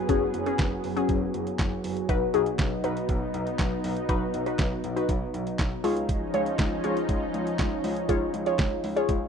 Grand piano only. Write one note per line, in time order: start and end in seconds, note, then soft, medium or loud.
0.09 0.20 F#1 loud
0.34 0.45 F#1 loud
0.59 0.70 F#1 medium
0.84 0.95 F#1 medium
1.09 1.20 F#1 loud
1.34 1.45 F#1 medium
1.59 1.70 F#1 loud
1.84 1.95 F#1 medium
2.09 2.20 B1 medium
2.34 2.45 B1 loud
2.59 2.70 B1 loud
2.84 2.95 B1 loud
3.09 3.20 B1 loud
3.34 3.45 B1 loud
3.59 3.70 B1 loud
3.84 3.95 B1 loud
4.09 4.20 B1 loud
4.34 4.45 B1 loud
4.59 4.70 B1 loud
4.84 4.95 B1 loud
5.09 5.20 B1 loud
5.34 5.45 B1 loud
5.59 5.70 B1 loud
5.84 6.18 C#2 loud
6.34 6.45 C#2 loud
6.59 6.70 C#2 loud
6.84 6.95 C#2 loud
7.09 7.20 C#2 loud
7.34 7.45 C#2 loud
7.59 7.70 C#2 loud
7.84 7.95 C#2 loud
8.09 8.20 C#2 loud
8.34 8.45 C#2 loud
8.59 8.70 C#2 loud
8.84 8.95 C#2 loud
9.09 9.20 C#2 loud